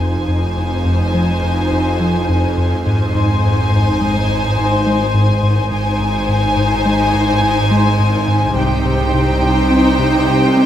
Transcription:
0.00 F1 F2 D#4 C5 G#5
0.28 F2
0.57 F2
0.86 F2
1.14 F3
1.43 F2
1.72 F2
2.00 F3
2.29 F2
2.58 F2
2.85 G#1 G#2 D#4 C5 G#5
3.15 G#2 C6
3.43 G#2
3.72 G#2
4.01 G#3
4.29 G#2
4.57 G#2 C5 C6
4.86 G#3
5.14 G#2
5.43 G#2
5.71 G#1 G#2 D#4 C5 G#5
6.00 G#2
6.29 G#2
6.57 G#2
6.86 G#3
7.14 G#2
7.43 G#2
7.71 G#3 C6
7.99 G#2
8.28 G#2
8.56 C2 C3 D#4 C5 G5
8.85 C3
9.14 C3
9.43 C3
9.71 C4
9.99 C3
10.28 C3
10.57 C4

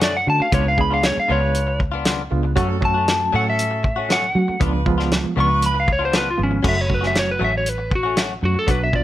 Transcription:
Already playing: F#2
0.01 D3 A3 C#4 F#4 D5, snare, closed hi-hat
0.17 F#5
0.26 D3 A3 C#4 D4 F#4 A5, muted clean electric guitar stroke
0.40 F#4 C#5 F5, muted clean electric guitar stroke, muted fingered electric bass stroke
0.52 C#2 C#3 G#3 B3 D4 F4 B4 C#5, kick, closed hi-hat
0.65 F5, muted clean electric guitar stroke
0.78 G#3 B3 D4 G#4 B5, kick
0.91 B3 D4 F4 F5
1.03 C#5, muted clean electric guitar stroke, snare, closed hi-hat
1.16 F5, muted clean electric guitar stroke, muted fingered electric bass stroke
1.28 C#2 C#3 B3 D4 F4 B4 C#5
1.42 muted clean electric guitar stroke
1.55 closed hi-hat
1.67 muted clean electric guitar stroke
1.79 muted clean electric guitar stroke, kick
1.92 B3 D4 F4
2.05 C#3 B3 D4 F4, snare, closed hi-hat
2.30 C#2 G#3 B3 D4 F4, muted clean electric guitar stroke
2.43 F4 B4, muted clean electric guitar stroke
2.56 F#2 F#3 A3 C#4 F#4 A4, kick, closed hi-hat
2.69 muted clean electric guitar stroke
2.81 F#3 A3 C#4 F#4, kick
2.85 A5
2.94 A3 C#4 F#4
3.07 muted clean electric guitar stroke, snare, closed hi-hat
3.20 muted clean electric guitar stroke
3.33 A2 F#3 A3 C#4 F#4 A4 F#5
3.46 E5, muted clean electric guitar stroke
3.59 closed hi-hat
3.71 muted clean electric guitar stroke
3.83 muted clean electric guitar stroke, kick
3.96 A3 C#4 F#4
4.09 F#3 A3 C#4 F#4 F#5, snare, closed hi-hat
4.35 F#3 A3 C#4 F#4, muted clean electric guitar stroke
4.48 F#4 B4, muted clean electric guitar stroke, muted fingered electric bass stroke
4.60 C#2 C#3 F3 G#3 B3 D4 F4 B4, kick, closed hi-hat
4.73 muted clean electric guitar stroke
4.86 F3 G#3 B3 F4, kick
4.98 B3 D4 F4, snare
5.12 snare, closed hi-hat
5.24 muted clean electric guitar stroke, muted fingered electric bass stroke
5.36 C#2 C#3 B3 D4 F4 B4
5.40 C#6
5.49 muted clean electric guitar stroke
5.62 closed hi-hat
5.66 B5
5.74 muted clean electric guitar stroke
5.80 F5
5.87 muted clean electric guitar stroke, kick
5.92 C#5
5.99 B3 D4 F4
6.05 C5
6.12 C#3 B3 D4 F4, snare, closed hi-hat
6.17 B4
6.30 F4
6.38 G#1 F3 G#3 B3 F4, muted clean electric guitar stroke
6.43 C#4
6.51 F4 B4, muted clean electric guitar stroke
6.63 F#1 F#3 A3 C#4 F#4, kick, crash
6.69 E5
6.76 muted clean electric guitar stroke
6.81 C#5
6.89 F#3 A3 C#4 F#4, kick
6.94 B4
7.01 A3 C#4 F#4, snare
7.07 E5
7.15 muted clean electric guitar stroke, snare, closed hi-hat
7.19 C#5
7.27 muted clean electric guitar stroke
7.31 B4
7.39 A1 F#3 A3 C#4 F#4
7.44 E5
7.53 muted clean electric guitar stroke
7.58 C#5
7.66 B4, closed hi-hat
7.78 muted clean electric guitar stroke
7.91 muted clean electric guitar stroke, kick
7.95 F#4
8.03 A3 C#4 F#4
8.16 F#3 A3 C#4 F#4, snare, closed hi-hat
8.41 F#2 F#3 A3 C#4 F#4, muted clean electric guitar stroke
8.54 muted clean electric guitar stroke, muted fingered electric bass stroke
8.59 A4
8.67 B1 B2 F#3 B3 D4 F#4 B4, kick, closed hi-hat
8.80 E5, muted clean electric guitar stroke
8.93 F#3 B3 D4 F4 D5, kick

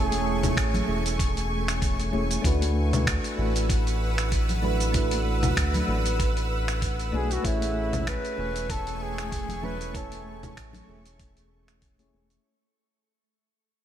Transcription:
Already playing: E1 A3 C#4 E4 G#4 C#5 G#5 C#6
0.12 open hi-hat, high conga, cabasa
0.43 open hi-hat, low conga, cabasa
0.57 A1, finger snap, kick, open hi-hat, cabasa
0.74 open hi-hat, low conga, cabasa
0.86 E1 A3 C#4 E4 G#4, high conga
0.91 C#5
1.06 open hi-hat, cabasa
1.19 kick, open hi-hat, cabasa
1.37 open hi-hat, cabasa
1.68 finger snap, open hi-hat, cabasa
1.82 kick, open hi-hat, cabasa
2.00 open hi-hat, cabasa
2.12 E1 A3 C#4 E4 G#4 C#5, high conga
2.31 open hi-hat, cabasa
2.42 D2 A3 D4 E4 F#4 B4 F#5 E6, kick, open hi-hat, cabasa
2.47 B4
2.62 open hi-hat, high conga, cabasa
2.93 open hi-hat, low conga, cabasa
3.07 finger snap, kick, open hi-hat, cabasa
3.24 open hi-hat, cabasa
3.36 A1 A3 D4 E4 F#4, high conga
3.41 B4
3.56 open hi-hat, cabasa
3.70 kick, open hi-hat, cabasa
3.87 open hi-hat, cabasa
4.18 finger snap, cabasa
4.32 kick, open hi-hat, cabasa
4.49 open hi-hat, low conga, cabasa
4.62 A3 D4 E4 F#4 B4, low conga
4.80 open hi-hat, cabasa
4.92 A3 D4 E4 F#4, kick, open hi-hat, cabasa
4.97 B4
5.11 open hi-hat, high conga, cabasa
5.43 open hi-hat, low conga, cabasa
5.57 D2, finger snap, kick, open hi-hat, cabasa
5.74 open hi-hat, low conga, cabasa
5.86 A1 A3 D4 E4 F#4, high conga
5.91 B4
6.06 open hi-hat, cabasa
6.20 kick, open hi-hat, cabasa
6.37 open hi-hat, cabasa
6.68 finger snap, cabasa
6.82 kick, open hi-hat, cabasa
7.00 open hi-hat, cabasa
7.12 B1 A3 D4 E4 F#4 G#4 B4, high conga
7.31 F#4, open hi-hat, cabasa
7.42 A1 A3 C#4 E4 G#4 G#5 C#6, kick, open hi-hat, cabasa
7.47 C#5
7.61 open hi-hat, high conga, cabasa
7.93 open hi-hat, low conga, cabasa
8.07 B4, finger snap, kick, open hi-hat, cabasa
8.25 open hi-hat, cabasa
8.36 E1 A3 C#4 E4 G#5, high conga
8.41 C#5
8.56 open hi-hat, cabasa
8.70 A4, kick, open hi-hat, cabasa
8.87 open hi-hat, cabasa
9.02 G#4
9.18 finger snap, cabasa
9.32 kick, open hi-hat, cabasa
9.49 open hi-hat, low conga, cabasa
9.62 A3 C#4 E4 G#4 B4 C#5, low conga
9.81 open hi-hat, cabasa
9.92 A3 C#4 E4 A4 G#5, kick, open hi-hat, cabasa
9.97 C#5
10.12 open hi-hat, high conga, cabasa
10.43 open hi-hat, low conga, cabasa
10.57 A1, finger snap, kick, open hi-hat, cabasa
10.73 open hi-hat, low conga, cabasa
10.86 E1 A3 C#4 E4 G#4, high conga
10.90 C#5
11.06 open hi-hat, cabasa
11.20 kick, open hi-hat, cabasa
11.37 open hi-hat, cabasa
11.68 finger snap, cabasa
11.82 kick, open hi-hat, cabasa
11.98 A3 C#4 E4 G#4 C#5, open hi-hat, high conga, cabasa
12.13 E1, high conga
12.30 open hi-hat, cabasa

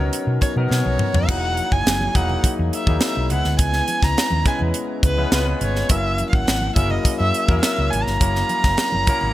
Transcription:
Already playing: F#3 B3 C#4 D#4 A#4 C#5
0.12 closed hi-hat, muted conga
0.27 B2
0.41 C#5, kick, closed hi-hat
0.56 B2 F#3 B3 C#4 D#4 A#4, high conga
0.70 B2 C#5, snare
0.85 B1, muted conga, high conga
0.99 mid tom, low conga
1.14 F2, floor tom
1.28 E1 F#3 A#3 D#4 E4 G#4 F#5, kick, splash, muted conga
1.43 muted conga
1.57 closed hi-hat, high conga
1.72 F#1 G#5, kick
1.86 F#1, snare, closed hi-hat, muted conga
2.01 high conga
2.15 E1 F#3 A#3 D#4 E4 G#4 F#5, kick, closed hi-hat, low conga
2.29 low conga
2.44 muted fingered electric bass stroke, kick, closed hi-hat
2.58 E2, muted conga
2.73 E5, closed hi-hat
2.87 D#2 F#3 A#3 D#4 E4 G#4, kick, high conga
3.01 E5, snare, closed hi-hat, muted conga
3.16 B1, muted conga
3.30 C#2 G#3 B3 C#4 E4 B4 F#5, closed hi-hat, low conga
3.44 D2, snare
3.59 C#2 G#5, kick, closed hi-hat, muted conga
3.73 snare, muted conga
3.88 closed hi-hat, high conga
4.03 C#2 A#5, kick, snare
4.17 snare, closed hi-hat, muted conga
4.30 D#2, high conga
4.45 G#3 B3 C#4 E4 B4 G#5, kick, closed hi-hat, low conga
4.59 E2, low conga
4.74 closed hi-hat
5.03 C#2 B4, kick, closed hi-hat
5.17 G#3 B3 C#4 E4 B4, high conga
5.31 C#2 G#3 B3 C#4 E4 B4, snare, closed hi-hat
5.38 F4
5.46 muted conga
5.61 G1 C#5, closed hi-hat, low conga
5.76 snare
5.89 F#1 F#3 A#3 C#4 E4 A#4 E5, kick, closed hi-hat, muted conga
6.18 closed hi-hat, high conga
6.29 G#1 F5, kick
6.35 F#5
6.47 G#1, snare, closed hi-hat, muted conga
6.61 high conga
6.75 F#1 F#3 A#3 C#4 E4 G#4 E5, kick, closed hi-hat, low conga
6.83 A#4
6.90 D#5, low conga
7.04 muted fingered electric bass stroke, kick, closed hi-hat, muted conga
7.18 F#2 E5
7.34 closed hi-hat
7.48 E2 F#3 A#3 C#4 E4 A#4, kick, high conga
7.62 E5, snare, closed hi-hat
7.78 C#2
7.90 G#1 G#5, closed hi-hat, low conga
8.04 G1 A#5, snare
8.20 F#1 F#3 A#3 C#4 E4 A#4, kick, closed hi-hat, muted conga
8.35 snare
8.49 closed hi-hat, high conga
8.64 F#1, kick, snare
8.78 snare, closed hi-hat, muted conga
8.92 F#1, high conga
9.07 F#3 A#3 C#4 E4 A#4, kick, closed hi-hat, low conga
9.21 G#1, low conga

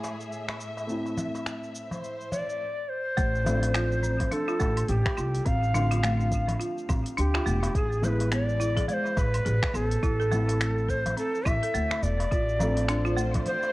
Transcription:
Already playing: A2 G#3 B3 E4 G#4 E5
0.04 darbuka tek, shaker
0.21 shaker
0.32 shaker
0.49 finger snap, darbuka tek, shaker
0.61 shaker
0.77 darbuka ka, shaker
0.87 A3 C4, shaker
0.91 E4
1.06 darbuka ka, shaker
1.17 darbuka dum, shaker
1.35 darbuka ka, shaker
1.46 finger snap, shaker
1.63 shaker
1.75 shaker
1.91 C5, darbuka ka, darbuka dum, shaker
2.04 shaker
2.21 shaker
2.32 D5, darbuka dum, shaker
2.50 shaker
2.89 C5
3.17 A1 A3, kick, open hi-hat, shaker
3.35 shaker
3.44 F3 A3 C4 D4, darbuka tek, darbuka dum, shaker
3.49 A4
3.63 open hi-hat, darbuka ka, shaker
3.74 F4, finger snap, open hi-hat, shaker
3.92 shaker
4.03 C4, shaker
4.20 kick, open hi-hat, darbuka ka, darbuka dum, shaker
4.31 D4 A4, open hi-hat, darbuka dum, shaker
4.48 F4, darbuka ka, shaker
4.60 A1 A3, kick, darbuka tek, shaker
4.77 open hi-hat, low woodblock, shaker
4.89 A1 G4, open hi-hat, shaker
5.06 finger snap, kick, darbuka tek, shaker
5.17 C2 F4, low woodblock, shaker
5.35 open hi-hat, shaker
5.46 A1 C4 F5, kick, open hi-hat, shaker
5.63 shaker
5.73 D3 F3 A3 C4 D4 F4, darbuka dum, shaker
5.91 F4, open hi-hat, darbuka ka, shaker
6.03 A3, finger snap, open hi-hat, shaker
6.21 shaker
6.32 kick, shaker
6.48 open hi-hat, darbuka ka, darbuka dum, shaker
6.60 F4, open hi-hat, shaker
6.78 shaker
6.89 A1 C4, kick, darbuka dum, low woodblock, shaker
7.06 open hi-hat, shaker
7.17 D2 D4 G4, open hi-hat, shaker
7.34 F4, finger snap, darbuka tek, shaker
7.46 E1 A3, shaker
7.63 open hi-hat, darbuka tek, shaker
7.75 A1 G#4, kick, open hi-hat, shaker
7.92 shaker
8.02 G#3 B3 E4 G#4 C5, darbuka tek, darbuka dum, shaker
8.08 B4
8.20 open hi-hat, darbuka ka, shaker
8.32 B3 D5, finger snap, open hi-hat, shaker
8.49 shaker
8.60 E4, shaker
8.76 G#4, kick, open hi-hat, darbuka ka, darbuka dum, shaker
8.88 G#3 D5, open hi-hat, darbuka dum, shaker
8.93 C5
9.06 darbuka ka, shaker
9.17 A1 B4, kick, darbuka tek, shaker
9.34 open hi-hat, low woodblock, shaker
9.45 A1 G#4, open hi-hat, shaker
9.63 finger snap, kick, darbuka tek, shaker
9.74 A1 B3 A4, low woodblock, shaker
9.92 open hi-hat, shaker
10.03 A1 E4, kick, open hi-hat, shaker
10.20 A4, shaker
10.30 A3 C4, darbuka dum, shaker
10.34 E4
10.48 open hi-hat, darbuka ka, shaker
10.61 finger snap, open hi-hat, shaker
10.78 shaker
10.88 A4 C5, kick, shaker
11.06 open hi-hat, darbuka ka, darbuka dum, shaker
11.17 C4 A4, open hi-hat, shaker
11.35 shaker
11.45 A1 E4 E5, kick, darbuka dum, low woodblock, shaker
11.63 A4, open hi-hat, shaker
11.74 D2 A3, open hi-hat, shaker
11.91 finger snap, darbuka tek, shaker
12.03 E1 D5, shaker
12.20 open hi-hat, darbuka tek, shaker
12.31 A1 F4, kick, open hi-hat, shaker
12.49 shaker
12.59 F3 A3 C4 D4, darbuka tek, darbuka dum, shaker
12.63 A4
12.72 C5
12.77 open hi-hat, darbuka ka, shaker
12.89 D4, finger snap, open hi-hat, shaker
13.05 F4, shaker
13.17 A3, shaker
13.34 D5, kick, open hi-hat, darbuka ka, darbuka dum, shaker
13.46 C5, open hi-hat, darbuka dum, shaker
13.63 darbuka ka, shaker

